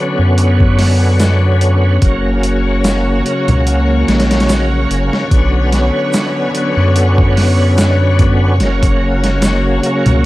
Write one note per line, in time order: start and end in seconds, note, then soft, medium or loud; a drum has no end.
0.00 1.96 D3 medium
0.00 2.00 D3 medium
0.00 1.97 F#3 medium
0.00 1.99 B3 medium
0.00 2.01 C#4 medium
0.00 10.26 C#5 medium
0.19 1.99 F#2 loud
0.38 closed hi-hat medium
0.60 kick medium
0.79 snare soft
0.79 open hi-hat medium
1.20 snare loud
1.20 closed hi-hat medium
1.20 shaker medium
1.61 closed hi-hat medium
1.98 3.19 C#3 medium
1.98 3.21 F#3 medium
1.98 5.28 A#3 medium
1.98 5.28 F#4 medium
1.98 kick loud
1.98 closed hi-hat medium
2.02 3.22 F#1 loud
2.02 3.23 A#3 medium
2.08 3.24 C#4 medium
2.43 closed hi-hat medium
2.84 snare loud
2.84 closed hi-hat medium
2.84 shaker medium
3.21 5.25 C#3 medium
3.21 5.26 F#3 medium
3.26 5.28 A#3 medium
3.26 closed hi-hat medium
3.31 5.30 C#4 medium
3.48 4.04 C#2 loud
3.48 closed hi-hat soft
3.48 low conga medium
3.67 closed hi-hat medium
4.08 4.86 A#1 medium
4.08 snare medium
4.08 closed hi-hat medium
4.20 snare medium
4.20 closed hi-hat medium
4.31 snare medium
4.31 closed hi-hat medium
4.40 snare medium
4.40 closed hi-hat medium
4.49 snare loud
4.49 closed hi-hat medium
4.49 shaker medium
4.90 5.10 F#1 medium
4.90 closed hi-hat medium
5.13 snare medium
5.28 5.91 B1 medium
5.28 6.48 D3 medium
5.28 8.56 D3 medium
5.28 6.50 F#3 medium
5.28 8.56 B3 medium
5.28 kick loud
5.28 closed hi-hat medium
5.34 6.51 B3 medium
5.34 6.53 C#4 medium
5.72 snare soft
5.72 closed hi-hat medium
6.13 snare loud
6.13 closed hi-hat medium
6.13 shaker medium
6.51 8.54 D3 medium
6.51 8.55 F#3 medium
6.55 8.57 B3 medium
6.55 closed hi-hat medium
6.60 8.58 C#4 loud
6.77 8.61 F#2 medium
6.96 closed hi-hat medium
7.18 kick medium
7.37 snare soft
7.37 open hi-hat medium
7.78 snare loud
7.78 closed hi-hat medium
7.78 shaker medium
8.19 kick medium
8.19 closed hi-hat medium
8.57 9.80 F#1 loud
8.57 9.77 C#3 medium
8.57 9.79 F#3 medium
8.57 10.26 A#3 medium
8.57 10.26 F#4 medium
8.57 snare soft
8.57 closed hi-hat medium
8.63 9.80 A#3 medium
8.63 9.82 C#4 medium
8.83 kick medium
8.83 closed hi-hat medium
9.24 snare soft
9.24 closed hi-hat medium
9.42 snare loud
9.42 closed hi-hat medium
9.42 shaker medium
9.80 10.26 C#3 medium
9.80 10.26 F#3 medium
9.80 closed hi-hat medium
9.86 10.26 A#3 medium
9.86 10.26 C#4 loud
10.06 10.26 C#2 loud
10.06 closed hi-hat soft
10.06 low conga medium